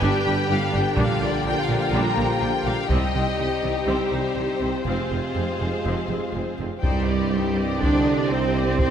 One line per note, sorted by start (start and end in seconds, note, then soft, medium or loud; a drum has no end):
0.00 0.11 G1 medium
0.00 0.10 G1 medium
0.00 0.09 G2 medium
0.00 2.85 D3 medium
0.00 0.92 G3 medium
0.00 0.24 G3 medium
0.00 0.94 B3 medium
0.00 2.91 D4 medium
0.00 0.24 D4 medium
0.00 0.98 G4 medium
0.00 2.86 G4 medium
0.00 0.95 B4 medium
0.00 0.98 B4 medium
0.00 4.86 G5 medium
0.00 0.51 G5 medium
0.25 0.35 G1 soft
0.25 0.34 G1 soft
0.25 0.33 G2 soft
0.25 0.33 G3 medium
0.25 0.34 D4 soft
0.49 0.58 G1 medium
0.49 0.58 G1 soft
0.49 0.58 G2 soft
0.49 0.57 G3 soft
0.49 0.57 D4 soft
0.49 0.74 F5 medium
0.73 0.83 G1 soft
0.73 0.82 G1 soft
0.73 0.81 G2 medium
0.73 0.81 G3 soft
0.73 0.81 D4 medium
0.73 0.98 G5 medium
0.96 1.06 A#1 medium
0.96 1.05 A#1 medium
0.96 1.05 A#2 medium
0.96 2.86 F3 medium
0.96 1.19 G3 medium
0.96 2.86 A#3 medium
0.96 1.19 D4 medium
0.96 2.90 F4 medium
0.96 2.91 F4 medium
0.96 2.87 A#4 medium
0.96 2.91 A#4 medium
0.96 1.22 F5 medium
0.96 taiko medium
1.20 1.28 A#1 soft
1.20 1.31 A#1 soft
1.20 1.29 A#2 soft
1.20 1.31 G3 soft
1.20 1.30 D4 soft
1.20 1.47 D5 medium
1.44 1.52 A#1 soft
1.44 1.55 A#1 soft
1.44 1.52 A#2 soft
1.44 1.54 G3 soft
1.44 1.53 D4 soft
1.44 1.62 G5 medium
1.63 1.77 F5 medium
1.67 1.75 A#1 soft
1.67 1.79 A#1 soft
1.67 1.76 A#2 soft
1.67 1.77 G3 soft
1.67 1.77 D4 soft
1.78 1.93 F5 medium
1.92 2.00 A#1 medium
1.92 2.03 A#1 medium
1.92 2.01 A#2 medium
1.92 2.16 G3 medium
1.92 2.16 D4 medium
1.92 2.41 A#5 medium
2.17 2.27 A#1 soft
2.17 2.25 A#1 soft
2.17 2.25 A#2 soft
2.17 2.26 G3 soft
2.17 2.26 D4 soft
2.40 2.49 A#1 soft
2.40 2.51 A#1 soft
2.40 2.49 A#2 soft
2.40 2.48 G3 soft
2.40 2.48 D4 soft
2.40 2.66 G5 medium
2.65 2.73 A#1 soft
2.65 2.75 A#1 soft
2.65 2.73 A#2 soft
2.65 2.74 G3 soft
2.65 2.74 D4 soft
2.65 2.90 F5 medium
2.88 2.98 C2 medium
2.88 3.00 C2 medium
2.88 6.54 C3 medium
2.88 2.98 C3 medium
2.88 4.80 G3 medium
2.88 3.12 G3 medium
2.88 3.12 C4 medium
2.88 6.55 C4 soft
2.88 6.81 C4 medium
2.88 4.85 D#4 medium
2.88 4.81 G4 medium
2.88 4.81 G4 soft
2.88 4.85 G4 medium
2.88 6.81 C5 medium
2.88 3.84 D#5 medium
2.88 taiko medium
3.13 3.21 C2 soft
3.13 3.24 C2 soft
3.13 3.23 C3 soft
3.13 3.23 G3 soft
3.13 3.23 C4 soft
3.38 3.47 C2 soft
3.38 3.47 C3 soft
3.38 3.46 G3 soft
3.38 3.46 C4 soft
3.62 3.70 C2 soft
3.62 3.73 C2 soft
3.62 3.71 C3 soft
3.62 3.70 G3 soft
3.62 3.70 C4 soft
3.86 3.96 C2 medium
3.86 3.95 C2 medium
3.86 3.95 C3 soft
3.86 4.09 G3 medium
3.86 4.09 C4 medium
3.86 4.83 C5 medium
4.10 4.20 C2 soft
4.10 4.18 C2 soft
4.10 4.20 C3 soft
4.10 4.19 G3 soft
4.10 4.19 C4 soft
4.34 4.43 C2 soft
4.34 4.46 C2 soft
4.34 4.45 C3 soft
4.34 4.42 G3 soft
4.34 4.42 C4 soft
4.60 4.68 C2 soft
4.60 4.71 C2 soft
4.60 4.70 C3 soft
4.60 4.69 G3 soft
4.60 4.69 C4 soft
4.84 4.93 F1 soft
4.84 4.96 F1 soft
4.84 4.94 F2 soft
4.84 5.08 F3 soft
4.84 6.55 G#3 soft
4.84 5.09 C4 soft
4.84 6.59 F4 soft
4.84 6.55 F4 soft
4.84 6.60 G#4 soft
4.84 6.85 G#4 soft
4.84 6.56 C5 medium
4.84 6.85 F5 soft
5.10 5.19 F1 soft
5.10 5.21 F1 soft
5.10 5.20 F2 soft
5.10 5.19 F3 soft
5.10 5.18 C4 soft
5.34 5.43 F1 soft
5.34 5.46 F1 soft
5.34 5.44 F2 soft
5.34 5.42 F3 soft
5.34 5.42 C4 soft
5.60 5.68 F1 soft
5.60 5.71 F1 soft
5.60 5.68 F2 soft
5.60 5.69 F3 soft
5.60 5.68 C4 soft
5.84 5.95 F1 soft
5.84 5.94 F1 soft
5.84 5.93 F2 soft
5.84 6.08 F3 soft
5.84 6.08 C4 soft
6.09 6.17 F1 soft
6.09 6.20 F1 soft
6.09 6.17 F2 soft
6.09 6.18 F3 soft
6.09 6.19 C4 soft
6.34 6.42 F1 soft
6.34 6.44 F1 soft
6.34 6.43 F2 soft
6.34 6.43 F3 soft
6.34 6.43 C4 soft
6.58 6.68 F1 soft
6.58 6.67 F1 soft
6.58 6.67 F2 soft
6.58 6.68 F3 soft
6.58 6.67 C4 soft
6.81 8.90 C2 soft
6.81 7.77 G2 medium
6.81 7.77 G3 medium
6.81 8.90 C4 medium
6.81 7.06 D#4 soft
6.81 8.90 G4 medium
6.81 7.78 G4 medium
6.81 8.90 C5 medium
6.81 7.06 C5 soft
6.81 7.06 D5 soft
6.81 7.05 G5 soft
6.81 taiko medium
7.08 7.33 G4 soft
7.08 7.30 D5 soft
7.08 7.33 D5 soft
7.08 7.33 D#5 soft
7.31 7.58 D#4 soft
7.31 7.57 C5 soft
7.31 7.54 D5 soft
7.31 7.56 G5 soft
7.55 7.82 G4 soft
7.55 7.80 D5 soft
7.55 7.82 D5 soft
7.55 7.80 D#5 soft
7.80 8.29 D3 medium
7.80 8.30 D4 medium
7.80 8.30 D4 soft
7.80 8.04 D#4 soft
7.80 8.04 C5 soft
7.80 8.04 D5 soft
7.80 8.30 D5 medium
7.80 8.03 G5 soft
7.80 taiko medium
8.05 8.30 G4 soft
8.05 8.28 D5 soft
8.05 8.30 D5 soft
8.05 8.30 D#5 soft
8.29 8.65 C3 medium
8.29 8.64 C4 medium
8.29 8.65 C4 medium
8.29 8.55 D#4 soft
8.29 8.64 C5 medium
8.29 8.54 C5 soft
8.29 8.53 D5 soft
8.29 8.54 G5 soft
8.54 8.79 G4 soft
8.54 8.78 D5 soft
8.54 8.79 D5 soft
8.54 8.79 D#5 soft
8.65 8.90 C3 medium
8.65 8.90 C4 medium
8.65 8.90 C5 medium
8.79 8.90 D#4 soft
8.79 8.90 C5 medium
8.79 8.90 D5 soft
8.79 8.90 G5 soft
8.79 taiko medium